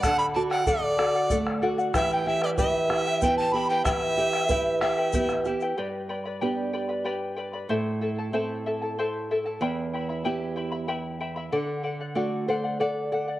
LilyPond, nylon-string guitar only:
\new Staff \with { instrumentName = "Nylon-string guitar" } { \time 3/4 \key e \minor \tempo 4 = 94 << { r2. | r2. | r2. | r2. |
r2. | r2. | r4. c''8 d''8 fis''8 | } \\ { d8 fis'8 a'8 fis'8 a8 fis'8 | e8 g'8 b'8 g'8 b8 g'8 | e8 g'8 b'8 g'8 b8 g'8 | g,4 <b d' g'>4 r4 |
a,4 <c' e' a'>4 r4 | e,4 <b e' g'>4 r4 | d4 <a d' fis'>4 r4 | } >> }